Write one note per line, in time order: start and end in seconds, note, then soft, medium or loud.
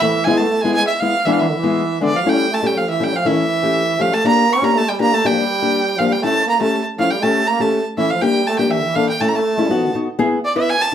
0.00 0.30 E3 medium
0.00 0.14 A3 medium
0.00 0.14 C4 medium
0.00 0.14 E4 medium
0.00 0.26 E5 loud
0.24 0.45 G#3 medium
0.24 0.45 B3 medium
0.24 0.45 E4 medium
0.24 0.39 G#5 loud
0.29 0.42 G#3 medium
0.37 0.66 A3 medium
0.37 0.63 A5 medium
0.61 0.82 G#3 medium
0.61 0.76 G#3 medium
0.61 0.82 B3 medium
0.61 0.83 E4 medium
0.61 0.74 G#5 loud
0.74 0.89 G#3 medium
0.74 0.87 G#5 loud
0.87 1.02 E5 medium
1.00 1.14 G#3 medium
1.00 1.14 B3 medium
1.00 1.14 E4 medium
1.00 1.27 F5 loud
1.25 1.40 E3 loud
1.25 1.45 G#3 medium
1.25 1.45 B3 medium
1.25 1.45 D4 medium
1.25 1.34 E5 medium
1.33 1.41 F5 medium
1.40 1.51 E3 medium
1.40 2.00 E5 medium
1.49 1.57 D3 medium
1.56 2.00 E3 loud
1.63 1.82 G#3 medium
1.63 1.82 B3 medium
1.63 1.82 E4 medium
2.01 2.13 D3 medium
2.01 2.13 G#3 medium
2.01 2.13 B3 medium
2.01 2.13 D4 medium
2.01 2.18 D5 loud
2.14 2.27 F3 medium
2.14 2.31 F5 medium
2.25 2.50 G3 medium
2.25 2.44 A3 medium
2.25 2.45 C#4 medium
2.25 2.45 E4 medium
2.29 2.55 G5 loud
2.51 2.65 A3 medium
2.51 2.68 A5 medium
2.62 2.78 G3 medium
2.62 2.82 A3 medium
2.62 2.82 C#4 medium
2.62 2.82 G4 medium
2.67 2.79 G5 medium
2.77 2.88 F3 medium
2.77 2.89 F5 medium
2.89 3.04 E3 medium
2.89 3.05 E5 medium
3.00 3.15 G3 medium
3.00 3.13 A3 medium
3.00 3.13 C#4 medium
3.00 3.13 E4 medium
3.04 3.17 G5 loud
3.13 3.26 F3 medium
3.13 3.28 F5 medium
3.25 4.01 E3 medium
3.25 3.44 A3 medium
3.25 3.44 C#4 medium
3.25 3.44 E4 medium
3.25 4.03 E5 loud
3.63 3.82 A3 medium
3.63 3.82 C#4 medium
3.63 3.82 G4 medium
3.99 4.13 F3 medium
3.99 4.12 A3 medium
3.99 4.12 C#4 medium
3.99 4.12 G4 medium
3.99 4.15 F5 loud
4.12 4.27 A3 medium
4.12 4.26 A5 loud
4.24 4.43 A#3 medium
4.24 4.52 A#3 medium
4.24 4.44 D4 medium
4.24 4.43 G4 medium
4.24 4.54 A#5 loud
4.50 4.76 C#4 loud
4.50 4.66 C#6 medium
4.62 4.81 A#3 medium
4.62 4.81 D4 medium
4.62 4.81 G4 medium
4.62 4.79 A#5 loud
4.74 4.85 A3 medium
4.74 4.90 A5 loud
4.86 4.98 G3 medium
4.86 5.00 G5 medium
4.99 5.12 A#3 medium
4.99 5.13 A#3 medium
4.99 5.12 D4 medium
4.99 5.12 G4 medium
4.99 5.15 A#5 loud
5.12 5.27 A3 medium
5.12 5.27 A5 loud
5.25 5.33 G3 medium
5.25 5.43 A#3 medium
5.25 5.43 D4 medium
5.25 5.43 G4 medium
5.25 6.00 G5 loud
5.31 5.39 F3 medium
5.38 5.98 G3 medium
5.62 5.80 A#3 medium
5.62 5.81 D4 medium
5.62 5.81 G4 medium
5.97 6.09 F3 medium
5.97 6.12 A#3 medium
5.97 6.12 D4 soft
5.97 6.12 G4 medium
5.97 6.14 F5 medium
6.09 6.21 G3 medium
6.09 6.24 G5 medium
6.22 6.45 A3 medium
6.22 6.42 A3 medium
6.22 6.43 C#4 medium
6.22 6.42 E4 medium
6.22 6.47 A5 loud
6.46 6.60 A#3 medium
6.46 6.61 A#5 medium
6.58 6.85 A3 medium
6.58 6.79 A3 medium
6.58 6.80 C#4 soft
6.58 6.80 G4 medium
6.58 6.84 A5 medium
6.98 7.12 F3 medium
6.98 7.11 A3 medium
6.98 7.11 C#4 medium
6.98 7.11 E4 medium
6.98 7.12 F5 loud
7.10 7.24 G3 medium
7.10 7.24 G5 medium
7.23 7.52 A3 medium
7.23 7.42 A3 medium
7.23 7.42 C#4 medium
7.23 7.42 G4 medium
7.23 7.49 A5 loud
7.48 7.60 A#3 medium
7.48 7.63 A#5 medium
7.59 7.78 A3 medium
7.59 7.84 A3 medium
7.59 7.79 C#4 medium
7.59 7.79 G4 medium
7.59 7.86 A5 medium
7.97 8.14 E3 medium
7.97 8.10 A3 medium
7.97 8.10 C#4 medium
7.97 8.10 E4 medium
7.97 8.12 E5 medium
8.10 8.24 F3 medium
8.10 8.23 F5 medium
8.21 8.49 G3 medium
8.21 8.40 A#3 medium
8.21 8.40 D4 medium
8.21 8.40 G4 medium
8.21 8.49 G5 loud
8.47 8.59 A3 medium
8.47 8.58 A5 medium
8.58 8.72 G3 medium
8.58 8.77 A#3 medium
8.58 8.78 D4 soft
8.58 8.78 G4 medium
8.58 8.73 G5 medium
8.71 8.80 E3 medium
8.71 8.97 E5 medium
8.79 8.87 D3 medium
8.86 9.08 E3 medium
8.95 9.08 A#3 medium
8.95 9.08 D4 medium
8.95 9.08 A4 medium
8.95 9.08 F5 loud
9.09 9.22 G5 medium
9.20 9.34 A3 medium
9.20 9.39 A3 medium
9.20 9.39 C#4 medium
9.20 9.40 E4 medium
9.20 9.30 A5 medium
9.29 9.36 A#5 medium
9.35 9.90 A3 medium
9.35 9.94 A5 medium
9.57 9.69 A3 medium
9.57 9.70 C#4 soft
9.57 9.70 E4 medium
9.70 9.90 B3 medium
9.70 9.90 D#4 medium
9.70 9.90 F#4 medium
9.94 10.07 B3 medium
9.94 10.07 D#4 medium
9.94 10.07 F#4 medium
10.19 10.37 B3 loud
10.19 10.38 E4 medium
10.19 10.38 G#4 loud
10.45 10.56 D5 medium
10.55 10.74 B3 medium
10.55 10.74 E4 medium
10.55 10.75 B4 medium
10.55 10.71 E5 loud
10.70 10.83 G#5 loud
10.82 10.95 A5 medium